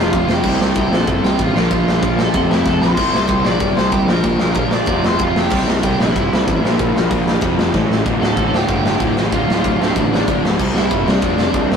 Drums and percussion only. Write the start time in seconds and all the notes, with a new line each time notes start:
0.13 kick, ride
0.29 snare
0.44 kick, crash
0.61 snare
0.75 kick, ride
0.93 snare
1.07 kick, ride
1.24 snare
1.39 kick, ride
1.56 snare
1.70 kick, ride
1.88 snare
2.03 kick, ride
2.19 snare
2.34 kick, ride
2.51 snare
2.66 kick, snare
2.82 snare
2.97 kick, crash
3.14 snare
3.28 kick, ride
3.45 snare
3.60 kick, ride
3.77 snare
3.92 kick, ride
4.09 snare
4.24 kick, ride
4.39 snare
4.54 kick, ride
4.71 snare
4.86 kick, ride
5.04 snare
5.19 kick, ride
5.36 snare
5.50 kick, crash
5.68 snare
5.83 kick, ride
6.00 snare
6.16 kick, ride
6.33 snare
6.48 kick, ride
6.65 snare
6.79 kick, ride
6.96 snare
7.11 kick, ride
7.28 snare
7.41 kick, ride
7.59 snare
7.74 kick, snare
7.92 snare
8.06 kick, ride
8.23 snare
8.37 kick, ride
8.54 snare
8.68 kick, ride
8.86 snare
9.00 kick, ride
9.17 snare
9.32 kick, ride
9.50 snare
9.64 kick, ride
9.82 snare
9.96 kick, ride
10.14 snare
10.28 kick, ride
10.45 snare
10.60 kick, crash
10.76 snare
10.91 kick, ride
11.08 snare
11.22 kick, ride
11.38 snare
11.54 kick, ride
11.72 snare